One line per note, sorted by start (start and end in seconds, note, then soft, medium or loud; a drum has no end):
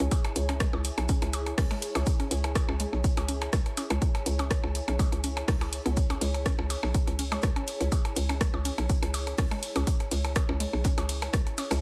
0.00 0.08 C#2 loud
0.00 0.07 C#4 medium
0.00 11.81 E4 medium
0.00 11.81 G#4 medium
0.00 11.81 C#5 medium
0.00 11.81 G#5 medium
0.00 closed hi-hat soft
0.00 percussion blips soft
0.11 kick loud
0.11 closed hi-hat medium
0.11 percussion blips medium
0.11 shaker medium
0.24 closed hi-hat soft
0.24 percussion blips medium
0.36 0.67 C#2 loud
0.36 closed hi-hat loud
0.36 shaker medium
0.49 0.54 C#4 medium
0.49 closed hi-hat soft
0.49 percussion blips medium
0.60 0.64 G#3 medium
0.60 kick loud
0.60 cross-stick loud
0.60 snare loud
0.60 closed hi-hat medium
0.60 shaker medium
0.73 0.90 C#2 loud
0.73 percussion blips medium
0.73 percussion blips soft
0.84 closed hi-hat loud
0.84 shaker medium
0.98 1.15 B1 medium
0.98 closed hi-hat soft
0.98 percussion blips medium
1.09 1.17 C#4 medium
1.09 kick loud
1.09 closed hi-hat medium
1.09 shaker loud
1.22 1.53 C#2 medium
1.22 closed hi-hat soft
1.22 percussion blips medium
1.33 closed hi-hat loud
1.33 percussion blips medium
1.33 shaker medium
1.46 closed hi-hat soft
1.46 percussion blips medium
1.58 1.67 C#2 medium
1.58 1.63 C#4 medium
1.58 kick loud
1.58 cross-stick medium
1.58 snare loud
1.58 closed hi-hat medium
1.58 open hi-hat medium
1.71 1.74 G#3 medium
1.71 closed hi-hat soft
1.71 percussion blips medium
1.82 closed hi-hat loud
1.82 shaker medium
1.95 2.04 C#2 loud
1.95 closed hi-hat soft
1.95 percussion blips medium
2.06 kick loud
2.06 closed hi-hat medium
2.06 shaker medium
2.20 2.27 C#4 medium
2.20 closed hi-hat soft
2.20 percussion blips soft
2.31 2.63 C#2 loud
2.31 snare soft
2.31 closed hi-hat loud
2.31 shaker medium
2.44 closed hi-hat soft
2.44 percussion blips medium
2.55 kick loud
2.55 cross-stick medium
2.55 snare loud
2.55 closed hi-hat medium
2.55 percussion blips medium
2.55 shaker loud
2.69 2.86 C#2 loud
2.69 2.73 C#4 medium
2.69 percussion blips medium
2.80 2.83 G#3 medium
2.80 closed hi-hat loud
2.80 shaker medium
2.93 3.10 B1 medium
2.93 snare soft
2.93 percussion blips soft
3.04 kick loud
3.04 closed hi-hat medium
3.04 shaker medium
3.17 3.48 C#2 medium
3.17 snare soft
3.17 closed hi-hat soft
3.17 percussion blips medium
3.28 3.36 C#4 medium
3.28 closed hi-hat medium
3.28 shaker medium
3.41 snare soft
3.41 closed hi-hat soft
3.41 percussion blips medium
3.53 3.62 C#2 medium
3.53 kick loud
3.53 cross-stick medium
3.53 snare loud
3.53 closed hi-hat medium
3.53 shaker medium
3.66 closed hi-hat soft
3.66 percussion blips soft
3.77 3.83 C#4 medium
3.77 snare loud
3.77 closed hi-hat loud
3.77 percussion blips medium
3.77 shaker medium
3.90 3.99 C#2 loud
3.90 3.93 G#3 medium
3.90 closed hi-hat soft
3.90 percussion blips medium
4.02 kick loud
4.02 closed hi-hat medium
4.02 shaker medium
4.15 snare soft
4.15 closed hi-hat soft
4.15 percussion blips medium
4.26 4.58 C#2 loud
4.26 closed hi-hat loud
4.26 shaker medium
4.38 4.46 C#4 medium
4.38 snare soft
4.38 closed hi-hat soft
4.38 percussion blips medium
4.38 percussion blips soft
4.50 kick loud
4.50 cross-stick medium
4.50 snare loud
4.50 closed hi-hat medium
4.50 shaker medium
4.64 4.81 C#2 loud
4.64 percussion blips medium
4.75 closed hi-hat loud
4.75 shaker medium
4.88 5.05 B1 medium
4.88 4.93 C#4 medium
4.88 closed hi-hat soft
4.88 percussion blips medium
4.99 5.03 G#3 medium
4.99 kick loud
4.99 closed hi-hat medium
4.99 percussion blips medium
4.99 shaker medium
5.12 5.43 C#2 medium
5.12 closed hi-hat soft
5.12 percussion blips soft
5.24 5.29 C#4 medium
5.24 closed hi-hat loud
5.24 shaker medium
5.37 closed hi-hat soft
5.37 percussion blips medium
5.48 5.80 C#2 medium
5.48 5.56 D#4 medium
5.48 kick loud
5.48 cross-stick medium
5.48 snare loud
5.48 closed hi-hat medium
5.48 open hi-hat medium
5.61 5.66 E4 medium
5.61 closed hi-hat soft
5.61 percussion blips medium
5.73 closed hi-hat loud
5.73 shaker medium
5.86 6.16 C#2 loud
5.86 5.88 B3 medium
5.86 closed hi-hat soft
5.86 percussion blips soft
5.97 kick loud
5.97 closed hi-hat medium
5.97 shaker medium
6.10 6.15 C#4 medium
6.10 closed hi-hat soft
6.10 percussion blips medium
6.21 6.53 C#2 loud
6.21 6.25 G#3 medium
6.21 snare medium
6.21 closed hi-hat medium
6.21 ride medium
6.21 shaker medium
6.34 closed hi-hat soft
6.34 percussion blips soft
6.46 6.54 C#4 medium
6.46 kick loud
6.46 cross-stick medium
6.46 snare loud
6.46 closed hi-hat medium
6.46 shaker medium
6.59 6.76 C#2 medium
6.59 percussion blips medium
6.70 closed hi-hat loud
6.70 ride medium
6.70 percussion blips medium
6.70 shaker medium
6.83 7.00 B1 medium
6.83 snare soft
6.83 percussion blips medium
6.94 kick loud
6.94 closed hi-hat medium
6.94 shaker medium
7.07 7.38 C#2 medium
7.07 snare soft
7.07 closed hi-hat soft
7.07 percussion blips soft
7.19 7.24 C#4 medium
7.19 closed hi-hat medium
7.19 ride medium
7.19 shaker medium
7.32 7.35 G#3 medium
7.32 snare soft
7.32 closed hi-hat soft
7.32 percussion blips medium
7.42 7.53 C#2 medium
7.42 kick loud
7.42 cross-stick medium
7.42 snare loud
7.42 closed hi-hat medium
7.42 shaker medium
7.56 7.63 C#4 medium
7.56 closed hi-hat soft
7.56 percussion blips medium
7.67 closed hi-hat medium
7.67 ride medium
7.67 shaker medium
7.80 7.89 C#2 loud
7.80 closed hi-hat soft
7.80 percussion blips soft
7.92 kick loud
7.92 closed hi-hat medium
7.92 percussion blips medium
7.92 shaker medium
8.05 closed hi-hat soft
8.05 percussion blips medium
8.16 8.48 C#2 loud
8.16 closed hi-hat medium
8.16 ride medium
8.16 shaker medium
8.29 8.34 C#4 medium
8.29 closed hi-hat soft
8.29 percussion blips medium
8.41 8.44 G#3 medium
8.41 kick loud
8.41 cross-stick medium
8.41 snare loud
8.41 closed hi-hat medium
8.41 shaker loud
8.54 8.71 C#2 medium
8.54 percussion blips medium
8.54 percussion blips soft
8.65 8.73 C#4 medium
8.65 closed hi-hat medium
8.65 ride medium
8.65 shaker medium
8.78 8.95 B1 medium
8.78 closed hi-hat soft
8.78 percussion blips medium
8.89 kick loud
8.89 closed hi-hat medium
8.89 shaker medium
9.03 9.33 C#2 medium
9.03 closed hi-hat soft
9.03 percussion blips medium
9.14 closed hi-hat medium
9.14 ride medium
9.14 percussion blips medium
9.14 shaker medium
9.27 closed hi-hat soft
9.27 percussion blips soft
9.38 9.48 C#2 medium
9.38 9.44 C#4 medium
9.38 kick loud
9.38 cross-stick medium
9.38 snare loud
9.38 closed hi-hat medium
9.38 open hi-hat medium
9.51 9.54 G#3 medium
9.51 closed hi-hat soft
9.51 percussion blips medium
9.63 closed hi-hat medium
9.63 ride medium
9.63 shaker medium
9.76 9.84 C#2 loud
9.76 9.83 C#4 medium
9.76 closed hi-hat soft
9.76 percussion blips medium
9.87 kick loud
9.87 closed hi-hat medium
9.87 shaker medium
10.00 closed hi-hat soft
10.00 percussion blips soft
10.11 10.43 C#2 loud
10.11 snare medium
10.11 closed hi-hat medium
10.11 ride medium
10.11 shaker medium
10.24 closed hi-hat soft
10.24 percussion blips medium
10.36 kick loud
10.36 cross-stick medium
10.36 snare loud
10.36 closed hi-hat medium
10.36 percussion blips medium
10.36 shaker medium
10.49 10.66 C#2 medium
10.49 10.54 C#4 medium
10.49 percussion blips medium
10.60 10.63 G#3 medium
10.60 closed hi-hat loud
10.60 ride medium
10.73 10.90 B1 medium
10.73 percussion blips soft
10.84 10.93 C#4 medium
10.84 kick loud
10.84 snare loud
10.84 closed hi-hat medium
10.84 shaker medium
10.98 11.28 C#2 medium
10.98 snare soft
10.98 closed hi-hat soft
10.98 percussion blips medium
11.09 closed hi-hat medium
11.09 ride medium
11.09 shaker medium
11.22 snare soft
11.22 closed hi-hat soft
11.22 percussion blips medium
11.33 11.43 C#2 medium
11.33 kick loud
11.33 cross-stick medium
11.33 snare loud
11.33 closed hi-hat medium
11.33 shaker medium
11.47 closed hi-hat soft
11.47 percussion blips soft
11.58 11.63 C#4 medium
11.58 snare loud
11.58 closed hi-hat medium
11.58 ride medium
11.58 percussion blips medium
11.58 shaker medium
11.70 11.79 C#2 loud
11.70 11.74 G#3 medium
11.70 snare loud
11.70 closed hi-hat soft
11.70 percussion blips medium
11.70 shaker medium